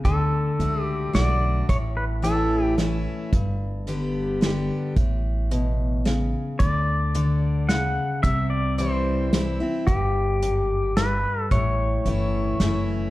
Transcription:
0.05 D2 D3 A4, kick, closed hi-hat
0.59 C#2 A3 D4 F#4, closed hi-hat
0.83 G4
1.13 B1 D3 A3 D4 F#4 D5, snare, closed hi-hat
1.69 A1 A2 C#5, kick, closed hi-hat
1.97 B4
2.22 E3 A3 C#4 E4 A4, closed hi-hat
2.78 E3 A3 C#4 E4, snare, closed hi-hat
3.33 G1 G2, kick, closed hi-hat
3.87 D3 G3 B3 G4, closed hi-hat
4.41 D3 G3 B3 G4, snare, closed hi-hat
4.96 A1 A2, kick, closed hi-hat
5.51 B2, closed hi-hat
6.05 C#3, snare, closed hi-hat
6.59 D2 D3 D5, kick, closed hi-hat
7.15 D3, closed hi-hat
7.69 C#3 F#5, snare, closed hi-hat
8.23 C2 C3 E5, kick, closed hi-hat
8.50 D5
8.78 E3 G3 C4 E4 C5, closed hi-hat
9.33 E3 G3 C4 E4, snare, closed hi-hat
9.60 C4 E4
9.87 G1 G2 G4, kick, closed hi-hat
10.42 F#2, closed hi-hat
10.97 G2 B4, snare, closed hi-hat
11.41 A4
11.51 A1 A2 C#5, kick, closed hi-hat
12.05 G1 E3 A3 C#4 E4, closed hi-hat
12.60 F#1 E3 A3 C#4 E4, snare, closed hi-hat

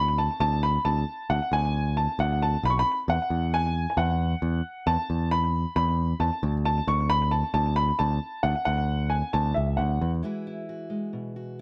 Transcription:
Already playing: D2 B5
0.18 A5
0.40 D2 A5
0.63 B5
0.85 D2 A5
1.30 D2 F#5
1.52 D2 G#5
1.97 A5
2.19 D2 F#5
2.42 A5
2.63 B1 B5
2.70 C#6
2.79 B5
3.08 E2 F#5
3.30 E2
3.54 G#5
3.90 G#5
3.97 E2 F#5
4.42 E2
4.87 E2 A5
5.10 E2
5.31 B5
5.76 E2 B5
6.20 E2 A5
6.43 D2
6.65 A5
6.87 D2 C#6
7.10 B5
7.31 A5
7.54 D2 A5
7.76 B5
7.99 D2 A5
8.43 D2 F#5
8.65 D2 F#5
9.10 G#5
9.33 D2 A5
9.54 C#2 E5
9.77 D2 F#5
10.01 E2
10.23 E3 G#3 E4 F#4 B4
10.47 E4
10.69 F#4
10.90 G#3
11.13 B2
11.36 F#4

